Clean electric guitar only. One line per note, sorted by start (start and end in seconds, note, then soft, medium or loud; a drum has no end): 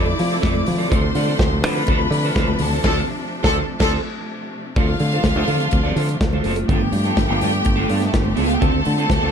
0.00 0.13 E4 medium
0.06 muted clean electric guitar stroke soft
0.18 muted clean electric guitar stroke soft
0.30 0.41 E4 soft
0.30 0.42 A4 medium
0.30 0.42 C5 medium
0.42 0.61 E4 medium
0.42 0.55 A4 medium
0.42 0.53 C5 loud
0.54 muted clean electric guitar stroke soft
0.67 muted clean electric guitar stroke medium
0.78 0.90 E4 medium
0.78 0.90 A4 medium
0.78 0.90 C5 medium
0.90 1.09 F4 medium
0.90 1.03 A4 medium
0.90 1.02 C5 loud
1.03 muted clean electric guitar stroke medium
1.15 1.27 F4 medium
1.15 1.27 A4 medium
1.15 1.26 D5 medium
1.27 1.38 F4 soft
1.27 1.38 A4 medium
1.27 1.40 D5 medium
1.39 muted clean electric guitar stroke soft
1.51 muted clean electric guitar stroke soft
1.64 1.76 F4 medium
1.64 1.76 A4 medium
1.64 1.75 C5 loud
1.76 1.87 F4 medium
1.76 1.88 A4 medium
1.76 1.89 C5 medium
1.88 2.06 F4 medium
1.88 2.01 A4 medium
1.88 1.99 C5 loud
2.00 muted clean electric guitar stroke medium
2.12 muted clean electric guitar stroke soft
2.25 2.35 F4 medium
2.25 2.36 A4 medium
2.25 2.37 C5 medium
2.36 2.54 F4 medium
2.36 2.49 A4 medium
2.36 2.48 C5 medium
2.49 muted clean electric guitar stroke soft
2.61 muted clean electric guitar stroke soft
2.73 2.84 F4 soft
2.73 2.84 A4 soft
2.73 2.84 C5 medium
2.85 3.01 F4 loud
2.85 3.01 A4 loud
2.85 3.01 C5 loud
3.43 3.60 F4 loud
3.43 3.60 A4 loud
3.43 3.61 C5 medium
3.80 3.96 F4 loud
3.80 3.96 A4 loud
3.80 3.97 C5 loud
4.77 4.95 F4 medium
4.77 4.90 A4 medium
4.77 4.88 C5 medium
4.90 muted clean electric guitar stroke soft
5.01 muted clean electric guitar stroke soft
5.13 5.24 F4 medium
5.13 5.24 A4 medium
5.13 5.25 C5 medium
5.25 muted clean electric guitar stroke soft
5.36 5.46 F4 medium
5.36 5.47 A4 medium
5.36 5.48 C5 medium
5.48 5.63 F4 medium
5.48 5.60 A4 medium
5.48 5.59 C5 medium
5.60 muted clean electric guitar stroke soft
5.71 muted clean electric guitar stroke soft
5.83 5.95 F4 medium
5.83 5.96 A4 medium
5.83 5.97 D5 loud
5.96 6.11 F4 medium
5.96 6.08 A4 medium
5.96 6.08 C5 medium
6.09 muted clean electric guitar stroke soft
6.21 muted clean electric guitar stroke soft
6.33 6.44 F4 medium
6.33 6.45 A4 medium
6.33 6.46 C5 medium
6.45 6.64 F4 medium
6.45 6.57 A4 medium
6.45 6.55 C5 medium
6.56 muted clean electric guitar stroke soft
6.68 6.87 B3 medium
6.68 6.81 F4 medium
6.68 6.80 A4 medium
6.81 muted clean electric guitar stroke soft
6.93 muted clean electric guitar stroke soft
7.05 7.16 B3 soft
7.05 7.17 F4 medium
7.05 7.17 A4 medium
7.17 muted clean electric guitar stroke soft
7.28 7.40 B3 medium
7.28 7.41 F4 medium
7.28 7.41 A4 medium
7.41 7.56 B3 medium
7.41 7.52 F4 medium
7.41 7.51 A4 medium
7.52 muted clean electric guitar stroke soft
7.64 muted clean electric guitar stroke soft
7.76 7.88 B3 medium
7.76 7.88 F4 medium
7.76 7.90 A4 medium
7.89 8.04 B3 medium
7.89 8.01 F4 medium
7.89 8.00 A4 medium
8.01 muted clean electric guitar stroke soft
8.13 muted clean electric guitar stroke soft
8.24 muted clean electric guitar stroke medium
8.36 8.55 B3 medium
8.36 8.48 F4 medium
8.36 8.47 A4 medium
8.48 muted clean electric guitar stroke soft
8.60 8.80 C4 medium
8.60 8.72 F4 medium
8.60 8.71 A4 medium
8.72 muted clean electric guitar stroke soft
8.84 muted clean electric guitar stroke soft
8.97 9.08 C4 medium
8.97 9.08 F4 medium
8.97 9.09 A4 medium
9.09 muted clean electric guitar stroke soft
9.21 9.32 C4 medium
9.21 9.32 F4 medium
9.21 9.32 A4 medium